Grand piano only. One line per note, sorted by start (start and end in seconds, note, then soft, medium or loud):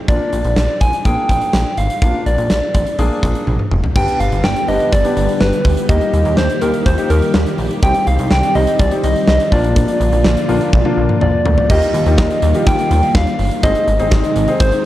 0.08 0.68 A#3 medium
0.08 0.68 D4 medium
0.08 0.68 F4 medium
1.05 1.64 A#3 medium
1.05 1.64 D4 medium
1.05 1.64 G#4 medium
2.02 2.61 A#3 medium
2.02 2.61 D4 medium
2.02 2.61 F4 medium
2.99 3.58 A#3 medium
2.99 3.58 D4 medium
2.99 3.58 G#4 medium
3.96 4.40 B3 medium
3.96 4.40 D4 medium
3.96 4.40 G4 medium
4.68 4.90 B3 medium
4.68 4.90 D4 medium
4.68 4.90 G4 medium
5.04 5.56 B3 medium
5.04 5.56 D4 medium
5.04 5.56 G4 medium
5.89 6.33 A#3 medium
5.89 6.33 D#4 medium
5.89 6.33 G4 medium
6.62 6.84 A#3 medium
6.62 6.84 D#4 medium
6.62 6.84 G4 medium
6.98 7.50 A#3 medium
6.98 7.50 D#4 medium
6.98 7.50 G4 medium
7.83 8.27 C4 medium
7.83 8.27 D#4 medium
7.83 8.27 G4 medium
8.55 8.77 C4 medium
8.55 8.77 D#4 medium
8.55 8.77 G4 medium
8.91 9.43 C4 medium
8.91 9.43 D#4 medium
8.91 9.43 G4 medium
9.52 10.29 A#3 medium
9.52 10.29 D4 medium
9.52 10.29 F4 medium
10.49 10.71 A#3 medium
10.49 10.71 D4 medium
10.49 10.71 F4 loud
10.85 11.37 A#3 medium
10.85 11.37 D4 medium
10.85 11.37 F4 loud
11.70 11.92 A#3 medium
11.70 11.92 D#4 medium
11.70 11.92 F4 medium
11.70 11.92 G4 medium
12.06 12.36 A#3 medium
12.06 12.36 D#4 medium
12.06 12.36 F4 medium
12.06 12.36 G4 medium
12.55 13.14 A#3 medium
12.55 13.14 D#4 medium
12.55 13.14 F4 medium
12.55 13.14 G4 medium
13.63 13.85 C4 medium
13.63 13.85 D#4 medium
13.63 13.85 G#4 medium
13.63 13.85 C5 medium
13.99 14.29 C4 medium
13.99 14.29 D#4 medium
13.99 14.29 G#4 medium
13.99 14.29 C5 medium
14.48 14.85 C4 medium
14.48 14.85 D#4 medium
14.48 14.85 G#4 medium
14.48 14.85 C5 medium